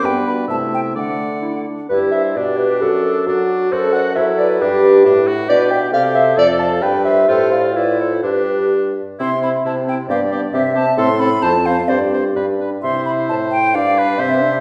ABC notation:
X:1
M:2/4
L:1/8
Q:1/4=133
K:G
V:1 name="Flute"
g b a g | f3 z | G c B G | F3 z |
A d c B | G3 z | [K:C] B e d c | A f d c |
A d B A | G2 z2 | c' b a g | f d e a |
c' b a f | d2 z2 | c' b a g | f2 e2 |]
V:2 name="Clarinet"
G F E2 | D2 E D | B e d B | A3 z |
c f e d | B3 z | [K:C] d g f e | d a g e |
c f d c | B2 z2 | e2 c2 | d2 e2 |
A2 c2 | G3 z | e2 c2 | d2 e2 |]
V:3 name="Oboe"
B2 e2 | d3 z | E2 D2- | D2 D2 |
F2 E2 | D2 D F | [K:C] G2 G2 | A2 B2 |
F2 E2 | D3 z | E E E E | G G G G |
A A c c | c c B B | c4 | d B c2 |]
V:4 name="French horn"
B,2 A,2 | A,3 z | z2 G2 | A2 F2 |
A2 A2 | G2 E2 | [K:C] D2 A2- | A2 G2- |
G2 F2 | G3 z | C C C C | B, B, C C |
C C C C | C C D D | E4 | D2 C D |]
V:5 name="Bassoon" clef=bass
G,,2 C,2 | D,3 z | G,,2 B,,2 | F,,2 F,2 |
F,,2 F,2 | G,,2 A,,2 | [K:C] B,,2 C,2 | F,,2 G,,2 |
A,,4 | G,,3 z | C,2 C,2 | G,,2 C,2 |
A,,2 F,,2 | G,,2 G,,2 | C,2 A,,2 | G,,2 C,2 |]